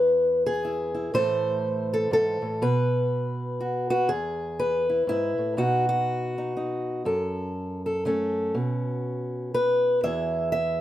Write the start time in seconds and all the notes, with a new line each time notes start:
Already playing: E2 E4 B4
0.46 G#4
0.65 E4
0.95 E4
1.14 A2 E3 A3 A4 C5
1.94 A4
2.11 G#2 A4
2.42 A2
2.62 B2 B4
3.61 F#4
3.90 F#4 B4
4.08 E2 G#4
4.59 B4
4.89 E4
5.07 G#2 E4
5.38 A2
5.57 B2 D#4 F#4
5.89 F#4
6.38 D#4
6.57 D#4
7.05 F#2 A4
7.86 A4
8.05 A3 C#4 A4
8.55 B2
9.54 B4
10.03 E2 E3 E4 G#4 E5
10.52 E5